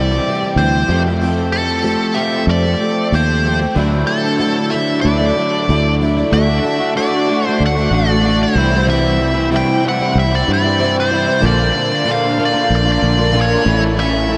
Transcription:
Already playing: C2 C3 E3 G3 C4 G4 D5
0.11 G3 C4 G4
0.28 E3 G3 C4 G4
0.42 G3 C4 G4
0.56 D2 C3 E3 G3 C4 G4 C5
0.88 F2 F3
0.92 F3 A3 C4 G4
1.06 A3 C4 G4
1.21 F3 A3 C4 G4
1.52 A4
1.84 F3 A3 C4 G4
2.14 F3 A3 C4 G4 E5
2.19 G4
2.47 F2 D5
2.65 A3 C4 G4
2.80 F3 A3 C4 G4
3.12 D#2 F3 A3 C4 G4 C5
3.45 F3 A3 C4 G4
3.60 A3 C4 G4
3.76 D2 D3 F#3 A3 D4 E4
3.93 A3 D4 E4
4.07 A4
4.39 D3 F#3 A3 D4 E4
4.70 F#3 A3 D4 E4 E5
5.01 D2 D3 F#3 A3 D4 E4 D5
5.18 A3 D4 E4
5.37 F#3 A3 D4 E4
5.69 D2 D3 F#3 A3 D4 E4
6.01 F#3 A3 D4 E4
6.17 A3 D4 E4
6.32 D2 D3 A3 D4 F#4 E5
6.46 A3 D4 F#4
6.64 D3 A3 D4 F#4
6.79 A3 D4 F#4
6.97 D3 A3 D4 F#4 D5
7.30 D3 A3 D4 F#4
7.47 A3 D4 F#4 C5
7.60 D2
7.66 F#5
7.77 A3 D4 F#4
7.91 A1 D3 A3 D4 F#4 D5
8.07 D4 F#4
8.11 A3 D4 F#4
8.25 D3 A3 D4 F#4
8.43 C5
8.55 C2 C3 G3 E4
8.59 E3 G3 C4 E4
8.73 G3 C4 E4
8.87 C3 E3 G3 C4 E4 E5
9.03 G3 C4 E4
9.20 E3 G3 C4 E4
9.34 G3 C4 E4
9.51 C3 E3 G3 C4 E4
9.56 G5
9.85 E3 G3 C4 E4 F#5
10.00 G3 C4 E4
10.15 C2 E5
10.31 G3 C4 E4
10.35 D5
10.47 G2 E3 G3 C4 E4
10.53 D5
10.64 G3 C4 E4
10.79 C3 E3 G3 C4 E4
11.00 C5
11.11 E3 G3 C4 E4
11.25 G3 C4 E4
11.40 A#1 A#2 D3 A#3 D4 F4
11.46 D5
11.58 A#3 D4 F4
11.72 D3 A#3 D4 F4
11.90 A#3 D4 F4
12.04 A#2 D3 A#3 D4 F4
12.11 F5
12.37 D3 A#3 D4 F4
12.45 D5
12.53 A#3 D4 F4
12.70 A#1
12.76 D5
12.85 A#3 D4 F4
12.92 D5
13.01 A#1 D3 A#3 D4 F4
13.17 A#3 D4 F4
13.31 A#2 D3 A#3 D4 F4
13.41 C#5
13.65 A1 A2 E3 A3 C#4 E4
13.81 A3 C#4 E4
13.97 A2 E3 A3 C#4 E4 E5
14.13 A3 C#4 E4
14.27 E3 A3 C#4 E4

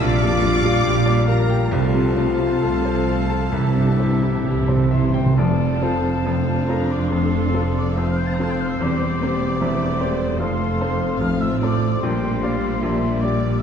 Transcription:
0.00 A#1 A#2 F3 G3 F4 G4 D5 F5 D6
0.21 F2 G3 G4
0.43 F3 D4 F4
0.64 G3 F4 G4
0.84 A#1 A#2 F3 F4 G4
1.06 G3 G4 D5
1.27 F3 F4 A#4 D5 F5 A#5
1.49 G3 G4 G5
1.71 C2 C3 A3 F4 A4 C5 F5 A5
1.94 C3 F3 A4
2.16 A3 C4 F4
2.39 F3 F4 A4
2.61 C2 C3 F3 A3 F4 A4
2.85 F3 A4 C5
3.08 A3 F4 F5
3.30 F3 A4 A5
3.52 C2 C3 E3 G3 E4 G4 E5
3.71 C3
3.76 G2 G3 G4
3.87 C3
3.96 C3 C4
4.00 C3 E3 E4
4.11 C3
4.20 C3 G3 E4 G4
4.28 C3
4.36 C3
4.44 C2 C3 E3 E4 G4
4.53 C3
4.61 C3
4.68 C3 G3 G4 C5
4.77 C3
4.84 C3
4.91 C3 E3 E4 C5 E5 C6
5.01 C3
5.10 C3 G5
5.16 C3 G3 G4
5.26 C3
5.37 F1 F2 F3 C4 F4 A4 C5 D5 A5
5.82 C4 F4 A4 C5
6.25 F1 F2 D4 F4 F5
6.68 C4 F4 A4 A#4 A#5
6.89 D5 D6
7.10 F1 F2 A4 C5 F5 C6
7.54 C4 F4 A4
7.78 D5 D6
7.93 F1 F2 C4 C5 E5 E6
8.05 F5 F6
8.16 G5 G6
8.24 A5 A6
8.32 A#5
8.39 C4 F4 A4 A5 A6
8.50 G5 G6
8.59 F5 F6
8.68 E5 E6
8.80 E1 E2 G3 C4 C5 D5 D6
9.21 A#3 C4 G4 C5
9.60 E1 E2 A3 C5 E5
9.99 C4 G4 C5 D5
10.39 F1 F2 A3 C4 A4 C5 F5 C6
10.81 C4 A4 C5
11.19 F1 A1 F2 A2 F4 F5 F6
11.41 E5 E6
11.60 C4 A4 C5 D5 D6
12.01 A#1 A#2 G3 D4 G4 C5 D5 G5 C6
12.43 G3 G4 D5 F5
12.82 A#1 A#2 G3 E5
13.21 G3 G4 D5 D6

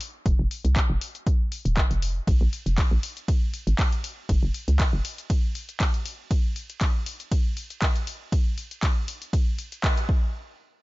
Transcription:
0.01 open hi-hat
0.26 F1, kick, closed hi-hat
0.39 F1
0.51 open hi-hat
0.65 C2, closed hi-hat
0.76 kick, clap, closed hi-hat
0.90 F1
1.01 open hi-hat
1.15 closed hi-hat
1.27 kick, closed hi-hat
1.52 open hi-hat
1.65 D#1, closed hi-hat
1.77 G#1, kick, clap, closed hi-hat
1.91 F1, closed hi-hat
2.02 open hi-hat
2.27 A#1, kick, closed hi-hat, ride
2.41 A#1
2.53 open hi-hat
2.66 F1, closed hi-hat
2.78 kick, clap, closed hi-hat, ride
2.91 A#1
3.03 open hi-hat
3.17 closed hi-hat
3.28 kick, closed hi-hat, ride
3.54 open hi-hat
3.67 G#1, closed hi-hat
3.79 kick, clap, closed hi-hat, ride
3.92 closed hi-hat
4.04 open hi-hat
4.29 F#1, kick, closed hi-hat, ride
4.43 F#1
4.54 open hi-hat
4.68 C#2, closed hi-hat
4.80 kick, clap, closed hi-hat, ride
4.93 F#1
5.05 open hi-hat
5.18 closed hi-hat
5.30 kick, closed hi-hat, ride
5.55 open hi-hat
5.69 closed hi-hat
5.80 kick, clap, closed hi-hat, ride
5.94 closed hi-hat
6.06 open hi-hat
6.31 kick, closed hi-hat, ride
6.56 open hi-hat
6.70 closed hi-hat
6.81 kick, clap, closed hi-hat, ride
7.06 open hi-hat
7.20 closed hi-hat
7.32 kick, closed hi-hat, ride
7.57 open hi-hat
7.70 closed hi-hat
7.82 kick, clap, closed hi-hat, ride
7.96 closed hi-hat
8.07 open hi-hat
8.32 kick, closed hi-hat, ride
8.58 open hi-hat
8.71 closed hi-hat
8.83 kick, clap, closed hi-hat, ride
9.08 open hi-hat
9.22 closed hi-hat
9.33 kick, closed hi-hat, ride
9.59 open hi-hat
9.72 closed hi-hat
9.84 kick, clap, closed hi-hat, ride
9.97 closed hi-hat
10.09 kick

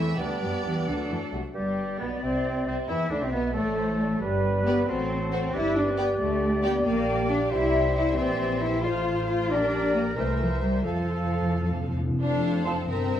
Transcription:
Already playing: E2 E3 A3 C4 E4 E5
0.17 D2 D3 G3 B3 D4 G4 D5
0.41 F#2 F#3
0.62 E2 E3 B3 G4
0.86 D2 D3 F#3 A3 D4 A4
1.10 E2 E3
1.32 C2 C3 A3 F#4
1.54 G1 G2 G3 G4 D5
1.98 B1 B2 B3
2.21 C2 C3 C4
2.66 C2 C3 C4
2.88 E2 E3 E4 E5
3.10 D2 D3 D4
3.20 C2 C3 C4
3.32 B1 B2 B3
3.53 A1 A2 A3 A4 D5
3.77 C5
4.00 D5
4.21 G1 G3 G4 B4
4.65 B3 G4 B4 D5
4.87 A1 F#3 C4 F#4 A4 C5
5.32 C4 F#4 C5
5.52 G1 G3 E4 G4 B4 D5
5.76 D4
5.87 C4
5.97 B3 G4 D5 G5
6.19 D2 A3 D5
6.63 B3 G4 D5 G5
6.85 A#1 G3 A#3 G4 D5 F5 G5
7.30 D4
7.50 C2 G3 E4 C5 E5
7.95 E4
8.17 A#1 E3 C4 G4 C5 D5
8.62 E4
8.83 A1 F3 F4 A4 C5 F5
9.28 F4
9.50 A#1 G3 D4 G4 A#4 D5 G5
9.95 A#3
10.16 C2 E3 A3 A#4 C5 E5
10.40 F3
10.62 G3
10.84 F2 F3 A4 F5
10.93 F2
11.01 F2
11.08 F2
11.15 F2
11.24 F2
11.32 F2
11.40 F2
11.48 F2
11.55 F2
11.63 F2
11.71 F2
11.78 F2
11.86 F2
11.93 F2
12.00 F2
12.09 F2
12.20 F1 F2 D4 A4 C5 F5
12.65 F3 C4 C5 A5
12.87 G1 G2 C4 A#4 E5

